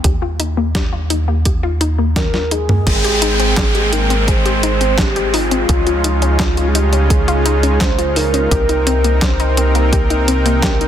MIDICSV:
0, 0, Header, 1, 7, 480
1, 0, Start_track
1, 0, Tempo, 705882
1, 30, Time_signature, 4, 2, 24, 8
1, 7398, End_track
2, 0, Start_track
2, 0, Title_t, "Soft synth lead"
2, 0, Program_c, 0, 80
2, 1470, Note_on_c, 0, 70, 96
2, 1710, Note_on_c, 0, 68, 106
2, 1720, Note_off_c, 0, 70, 0
2, 2670, Note_on_c, 0, 70, 92
2, 2680, Note_off_c, 0, 68, 0
2, 2911, Note_on_c, 0, 72, 99
2, 2921, Note_off_c, 0, 70, 0
2, 3391, Note_on_c, 0, 67, 100
2, 3401, Note_off_c, 0, 72, 0
2, 3631, Note_on_c, 0, 65, 107
2, 3641, Note_off_c, 0, 67, 0
2, 4543, Note_on_c, 0, 68, 70
2, 4553, Note_off_c, 0, 65, 0
2, 4590, Note_on_c, 0, 67, 90
2, 4600, Note_off_c, 0, 68, 0
2, 4825, Note_off_c, 0, 67, 0
2, 4829, Note_on_c, 0, 68, 102
2, 5310, Note_on_c, 0, 72, 106
2, 5320, Note_off_c, 0, 68, 0
2, 5550, Note_on_c, 0, 70, 107
2, 5560, Note_off_c, 0, 72, 0
2, 6269, Note_on_c, 0, 72, 105
2, 6279, Note_off_c, 0, 70, 0
2, 6510, Note_on_c, 0, 70, 110
2, 6520, Note_off_c, 0, 72, 0
2, 7226, Note_off_c, 0, 70, 0
2, 7230, Note_on_c, 0, 70, 108
2, 7398, Note_off_c, 0, 70, 0
2, 7398, End_track
3, 0, Start_track
3, 0, Title_t, "Synth arpeggio sound"
3, 0, Program_c, 1, 84
3, 29, Note_on_c, 1, 67, 83
3, 144, Note_off_c, 1, 67, 0
3, 149, Note_on_c, 1, 65, 76
3, 264, Note_off_c, 1, 65, 0
3, 269, Note_on_c, 1, 63, 76
3, 370, Note_off_c, 1, 63, 0
3, 390, Note_on_c, 1, 58, 76
3, 504, Note_off_c, 1, 58, 0
3, 509, Note_on_c, 1, 67, 103
3, 610, Note_off_c, 1, 67, 0
3, 629, Note_on_c, 1, 65, 79
3, 690, Note_off_c, 1, 65, 0
3, 750, Note_on_c, 1, 63, 96
3, 810, Note_off_c, 1, 63, 0
3, 870, Note_on_c, 1, 58, 75
3, 970, Note_off_c, 1, 58, 0
3, 990, Note_on_c, 1, 67, 85
3, 1090, Note_off_c, 1, 67, 0
3, 1110, Note_on_c, 1, 65, 108
3, 1210, Note_off_c, 1, 65, 0
3, 1229, Note_on_c, 1, 63, 102
3, 1330, Note_off_c, 1, 63, 0
3, 1350, Note_on_c, 1, 58, 81
3, 1450, Note_off_c, 1, 58, 0
3, 1469, Note_on_c, 1, 67, 84
3, 1584, Note_off_c, 1, 67, 0
3, 1590, Note_on_c, 1, 65, 75
3, 1704, Note_off_c, 1, 65, 0
3, 1709, Note_on_c, 1, 63, 81
3, 1810, Note_off_c, 1, 63, 0
3, 1829, Note_on_c, 1, 58, 76
3, 1943, Note_off_c, 1, 58, 0
3, 1949, Note_on_c, 1, 68, 85
3, 2050, Note_off_c, 1, 68, 0
3, 2069, Note_on_c, 1, 67, 102
3, 2170, Note_off_c, 1, 67, 0
3, 2189, Note_on_c, 1, 63, 99
3, 2290, Note_off_c, 1, 63, 0
3, 2309, Note_on_c, 1, 60, 77
3, 2410, Note_off_c, 1, 60, 0
3, 2429, Note_on_c, 1, 68, 77
3, 2544, Note_off_c, 1, 68, 0
3, 2550, Note_on_c, 1, 67, 80
3, 2664, Note_off_c, 1, 67, 0
3, 2669, Note_on_c, 1, 63, 72
3, 2770, Note_off_c, 1, 63, 0
3, 2790, Note_on_c, 1, 60, 80
3, 2904, Note_off_c, 1, 60, 0
3, 2909, Note_on_c, 1, 68, 106
3, 3010, Note_off_c, 1, 68, 0
3, 3030, Note_on_c, 1, 67, 85
3, 3090, Note_off_c, 1, 67, 0
3, 3150, Note_on_c, 1, 63, 102
3, 3210, Note_off_c, 1, 63, 0
3, 3269, Note_on_c, 1, 60, 76
3, 3370, Note_off_c, 1, 60, 0
3, 3389, Note_on_c, 1, 68, 82
3, 3490, Note_off_c, 1, 68, 0
3, 3509, Note_on_c, 1, 67, 100
3, 3610, Note_off_c, 1, 67, 0
3, 3629, Note_on_c, 1, 63, 110
3, 3730, Note_off_c, 1, 63, 0
3, 3749, Note_on_c, 1, 60, 77
3, 3850, Note_off_c, 1, 60, 0
3, 3870, Note_on_c, 1, 68, 83
3, 3984, Note_off_c, 1, 68, 0
3, 3989, Note_on_c, 1, 65, 80
3, 4104, Note_off_c, 1, 65, 0
3, 4109, Note_on_c, 1, 63, 80
3, 4210, Note_off_c, 1, 63, 0
3, 4229, Note_on_c, 1, 61, 79
3, 4343, Note_off_c, 1, 61, 0
3, 4349, Note_on_c, 1, 68, 98
3, 4450, Note_off_c, 1, 68, 0
3, 4470, Note_on_c, 1, 65, 79
3, 4530, Note_off_c, 1, 65, 0
3, 4590, Note_on_c, 1, 63, 98
3, 4650, Note_off_c, 1, 63, 0
3, 4710, Note_on_c, 1, 61, 77
3, 4810, Note_off_c, 1, 61, 0
3, 4830, Note_on_c, 1, 68, 87
3, 4930, Note_off_c, 1, 68, 0
3, 4950, Note_on_c, 1, 65, 109
3, 5050, Note_off_c, 1, 65, 0
3, 5070, Note_on_c, 1, 63, 105
3, 5170, Note_off_c, 1, 63, 0
3, 5190, Note_on_c, 1, 61, 80
3, 5290, Note_off_c, 1, 61, 0
3, 5310, Note_on_c, 1, 68, 86
3, 5424, Note_off_c, 1, 68, 0
3, 5430, Note_on_c, 1, 65, 78
3, 5544, Note_off_c, 1, 65, 0
3, 5550, Note_on_c, 1, 63, 80
3, 5650, Note_off_c, 1, 63, 0
3, 5669, Note_on_c, 1, 61, 79
3, 5784, Note_off_c, 1, 61, 0
3, 5790, Note_on_c, 1, 67, 97
3, 5890, Note_off_c, 1, 67, 0
3, 5910, Note_on_c, 1, 63, 78
3, 5970, Note_off_c, 1, 63, 0
3, 6030, Note_on_c, 1, 60, 105
3, 6090, Note_off_c, 1, 60, 0
3, 6150, Note_on_c, 1, 58, 81
3, 6250, Note_off_c, 1, 58, 0
3, 6270, Note_on_c, 1, 67, 85
3, 6370, Note_off_c, 1, 67, 0
3, 6390, Note_on_c, 1, 63, 109
3, 6490, Note_off_c, 1, 63, 0
3, 6510, Note_on_c, 1, 60, 96
3, 6610, Note_off_c, 1, 60, 0
3, 6630, Note_on_c, 1, 58, 83
3, 6730, Note_off_c, 1, 58, 0
3, 6751, Note_on_c, 1, 67, 92
3, 6864, Note_off_c, 1, 67, 0
3, 6871, Note_on_c, 1, 63, 77
3, 6984, Note_off_c, 1, 63, 0
3, 6991, Note_on_c, 1, 60, 76
3, 7091, Note_off_c, 1, 60, 0
3, 7110, Note_on_c, 1, 58, 80
3, 7224, Note_off_c, 1, 58, 0
3, 7230, Note_on_c, 1, 67, 108
3, 7330, Note_off_c, 1, 67, 0
3, 7350, Note_on_c, 1, 63, 77
3, 7398, Note_off_c, 1, 63, 0
3, 7398, End_track
4, 0, Start_track
4, 0, Title_t, "Supersaw synth"
4, 0, Program_c, 2, 81
4, 1949, Note_on_c, 2, 56, 78
4, 1949, Note_on_c, 2, 60, 71
4, 1949, Note_on_c, 2, 79, 89
4, 3850, Note_off_c, 2, 56, 0
4, 3850, Note_off_c, 2, 60, 0
4, 3850, Note_off_c, 2, 79, 0
4, 3869, Note_on_c, 2, 56, 84
4, 3869, Note_on_c, 2, 61, 74
4, 3869, Note_on_c, 2, 63, 77
4, 3869, Note_on_c, 2, 65, 73
4, 3870, Note_on_c, 2, 49, 82
4, 5770, Note_off_c, 2, 49, 0
4, 5770, Note_off_c, 2, 56, 0
4, 5770, Note_off_c, 2, 61, 0
4, 5770, Note_off_c, 2, 65, 0
4, 5790, Note_on_c, 2, 60, 72
4, 5790, Note_on_c, 2, 70, 90
4, 5790, Note_on_c, 2, 79, 75
4, 5791, Note_on_c, 2, 48, 82
4, 7398, Note_off_c, 2, 48, 0
4, 7398, Note_off_c, 2, 60, 0
4, 7398, Note_off_c, 2, 63, 0
4, 7398, Note_off_c, 2, 70, 0
4, 7398, Note_off_c, 2, 79, 0
4, 7398, End_track
5, 0, Start_track
5, 0, Title_t, "Analog synth bass"
5, 0, Program_c, 3, 38
5, 30, Note_on_c, 3, 39, 87
5, 1926, Note_off_c, 3, 39, 0
5, 1950, Note_on_c, 3, 32, 91
5, 3846, Note_off_c, 3, 32, 0
5, 3870, Note_on_c, 3, 37, 90
5, 5766, Note_off_c, 3, 37, 0
5, 5789, Note_on_c, 3, 36, 90
5, 7398, Note_off_c, 3, 36, 0
5, 7398, End_track
6, 0, Start_track
6, 0, Title_t, "Downlifter"
6, 0, Program_c, 4, 103
6, 1950, Note_on_c, 4, 60, 80
6, 5790, Note_off_c, 4, 60, 0
6, 7398, End_track
7, 0, Start_track
7, 0, Title_t, "Drums"
7, 29, Note_on_c, 9, 42, 89
7, 30, Note_on_c, 9, 36, 108
7, 97, Note_off_c, 9, 42, 0
7, 98, Note_off_c, 9, 36, 0
7, 269, Note_on_c, 9, 42, 65
7, 337, Note_off_c, 9, 42, 0
7, 509, Note_on_c, 9, 38, 113
7, 509, Note_on_c, 9, 42, 93
7, 510, Note_on_c, 9, 36, 114
7, 577, Note_off_c, 9, 38, 0
7, 577, Note_off_c, 9, 42, 0
7, 578, Note_off_c, 9, 36, 0
7, 749, Note_on_c, 9, 42, 69
7, 817, Note_off_c, 9, 42, 0
7, 989, Note_on_c, 9, 42, 95
7, 990, Note_on_c, 9, 36, 106
7, 1057, Note_off_c, 9, 42, 0
7, 1058, Note_off_c, 9, 36, 0
7, 1230, Note_on_c, 9, 42, 59
7, 1298, Note_off_c, 9, 42, 0
7, 1469, Note_on_c, 9, 38, 113
7, 1469, Note_on_c, 9, 42, 93
7, 1469, Note_on_c, 9, 48, 61
7, 1470, Note_on_c, 9, 36, 108
7, 1537, Note_off_c, 9, 38, 0
7, 1537, Note_off_c, 9, 42, 0
7, 1537, Note_off_c, 9, 48, 0
7, 1538, Note_off_c, 9, 36, 0
7, 1590, Note_on_c, 9, 38, 58
7, 1658, Note_off_c, 9, 38, 0
7, 1709, Note_on_c, 9, 42, 62
7, 1777, Note_off_c, 9, 42, 0
7, 1830, Note_on_c, 9, 45, 83
7, 1898, Note_off_c, 9, 45, 0
7, 1950, Note_on_c, 9, 36, 121
7, 1950, Note_on_c, 9, 42, 69
7, 1950, Note_on_c, 9, 49, 105
7, 2018, Note_off_c, 9, 36, 0
7, 2018, Note_off_c, 9, 42, 0
7, 2018, Note_off_c, 9, 49, 0
7, 2070, Note_on_c, 9, 42, 43
7, 2138, Note_off_c, 9, 42, 0
7, 2189, Note_on_c, 9, 42, 99
7, 2257, Note_off_c, 9, 42, 0
7, 2309, Note_on_c, 9, 42, 41
7, 2377, Note_off_c, 9, 42, 0
7, 2429, Note_on_c, 9, 38, 115
7, 2429, Note_on_c, 9, 39, 106
7, 2429, Note_on_c, 9, 42, 71
7, 2430, Note_on_c, 9, 36, 120
7, 2497, Note_off_c, 9, 38, 0
7, 2497, Note_off_c, 9, 39, 0
7, 2497, Note_off_c, 9, 42, 0
7, 2498, Note_off_c, 9, 36, 0
7, 2549, Note_on_c, 9, 42, 41
7, 2617, Note_off_c, 9, 42, 0
7, 2670, Note_on_c, 9, 42, 104
7, 2738, Note_off_c, 9, 42, 0
7, 2790, Note_on_c, 9, 42, 42
7, 2858, Note_off_c, 9, 42, 0
7, 2910, Note_on_c, 9, 36, 119
7, 2910, Note_on_c, 9, 42, 71
7, 2978, Note_off_c, 9, 36, 0
7, 2978, Note_off_c, 9, 42, 0
7, 3030, Note_on_c, 9, 42, 41
7, 3098, Note_off_c, 9, 42, 0
7, 3150, Note_on_c, 9, 42, 97
7, 3218, Note_off_c, 9, 42, 0
7, 3270, Note_on_c, 9, 42, 45
7, 3338, Note_off_c, 9, 42, 0
7, 3389, Note_on_c, 9, 38, 121
7, 3389, Note_on_c, 9, 39, 94
7, 3389, Note_on_c, 9, 42, 70
7, 3390, Note_on_c, 9, 36, 119
7, 3457, Note_off_c, 9, 38, 0
7, 3457, Note_off_c, 9, 39, 0
7, 3457, Note_off_c, 9, 42, 0
7, 3458, Note_off_c, 9, 36, 0
7, 3509, Note_on_c, 9, 42, 40
7, 3577, Note_off_c, 9, 42, 0
7, 3629, Note_on_c, 9, 46, 79
7, 3697, Note_off_c, 9, 46, 0
7, 3749, Note_on_c, 9, 42, 41
7, 3817, Note_off_c, 9, 42, 0
7, 3869, Note_on_c, 9, 42, 67
7, 3870, Note_on_c, 9, 36, 127
7, 3937, Note_off_c, 9, 42, 0
7, 3938, Note_off_c, 9, 36, 0
7, 3989, Note_on_c, 9, 42, 43
7, 4057, Note_off_c, 9, 42, 0
7, 4109, Note_on_c, 9, 42, 98
7, 4177, Note_off_c, 9, 42, 0
7, 4230, Note_on_c, 9, 42, 43
7, 4298, Note_off_c, 9, 42, 0
7, 4349, Note_on_c, 9, 38, 120
7, 4349, Note_on_c, 9, 39, 99
7, 4349, Note_on_c, 9, 42, 73
7, 4350, Note_on_c, 9, 36, 124
7, 4417, Note_off_c, 9, 38, 0
7, 4417, Note_off_c, 9, 39, 0
7, 4417, Note_off_c, 9, 42, 0
7, 4418, Note_off_c, 9, 36, 0
7, 4470, Note_on_c, 9, 42, 39
7, 4538, Note_off_c, 9, 42, 0
7, 4590, Note_on_c, 9, 42, 100
7, 4658, Note_off_c, 9, 42, 0
7, 4710, Note_on_c, 9, 42, 42
7, 4778, Note_off_c, 9, 42, 0
7, 4830, Note_on_c, 9, 36, 123
7, 4830, Note_on_c, 9, 42, 73
7, 4898, Note_off_c, 9, 36, 0
7, 4898, Note_off_c, 9, 42, 0
7, 4950, Note_on_c, 9, 42, 43
7, 5018, Note_off_c, 9, 42, 0
7, 5070, Note_on_c, 9, 42, 99
7, 5138, Note_off_c, 9, 42, 0
7, 5190, Note_on_c, 9, 42, 45
7, 5258, Note_off_c, 9, 42, 0
7, 5310, Note_on_c, 9, 36, 122
7, 5310, Note_on_c, 9, 38, 127
7, 5310, Note_on_c, 9, 39, 94
7, 5310, Note_on_c, 9, 42, 71
7, 5378, Note_off_c, 9, 36, 0
7, 5378, Note_off_c, 9, 38, 0
7, 5378, Note_off_c, 9, 39, 0
7, 5378, Note_off_c, 9, 42, 0
7, 5430, Note_on_c, 9, 42, 40
7, 5498, Note_off_c, 9, 42, 0
7, 5550, Note_on_c, 9, 46, 72
7, 5618, Note_off_c, 9, 46, 0
7, 5671, Note_on_c, 9, 42, 43
7, 5739, Note_off_c, 9, 42, 0
7, 5790, Note_on_c, 9, 36, 123
7, 5790, Note_on_c, 9, 42, 66
7, 5858, Note_off_c, 9, 36, 0
7, 5858, Note_off_c, 9, 42, 0
7, 5910, Note_on_c, 9, 42, 43
7, 5978, Note_off_c, 9, 42, 0
7, 6030, Note_on_c, 9, 42, 97
7, 6098, Note_off_c, 9, 42, 0
7, 6150, Note_on_c, 9, 42, 39
7, 6218, Note_off_c, 9, 42, 0
7, 6270, Note_on_c, 9, 36, 127
7, 6270, Note_on_c, 9, 38, 127
7, 6270, Note_on_c, 9, 39, 90
7, 6270, Note_on_c, 9, 42, 70
7, 6338, Note_off_c, 9, 36, 0
7, 6338, Note_off_c, 9, 38, 0
7, 6338, Note_off_c, 9, 39, 0
7, 6338, Note_off_c, 9, 42, 0
7, 6390, Note_on_c, 9, 42, 42
7, 6458, Note_off_c, 9, 42, 0
7, 6510, Note_on_c, 9, 42, 100
7, 6578, Note_off_c, 9, 42, 0
7, 6630, Note_on_c, 9, 42, 43
7, 6698, Note_off_c, 9, 42, 0
7, 6750, Note_on_c, 9, 36, 122
7, 6750, Note_on_c, 9, 42, 70
7, 6818, Note_off_c, 9, 36, 0
7, 6818, Note_off_c, 9, 42, 0
7, 6870, Note_on_c, 9, 42, 41
7, 6938, Note_off_c, 9, 42, 0
7, 6990, Note_on_c, 9, 42, 88
7, 7058, Note_off_c, 9, 42, 0
7, 7110, Note_on_c, 9, 42, 46
7, 7178, Note_off_c, 9, 42, 0
7, 7230, Note_on_c, 9, 36, 122
7, 7230, Note_on_c, 9, 38, 126
7, 7230, Note_on_c, 9, 39, 94
7, 7230, Note_on_c, 9, 42, 67
7, 7298, Note_off_c, 9, 36, 0
7, 7298, Note_off_c, 9, 38, 0
7, 7298, Note_off_c, 9, 39, 0
7, 7298, Note_off_c, 9, 42, 0
7, 7350, Note_on_c, 9, 42, 41
7, 7398, Note_off_c, 9, 42, 0
7, 7398, End_track
0, 0, End_of_file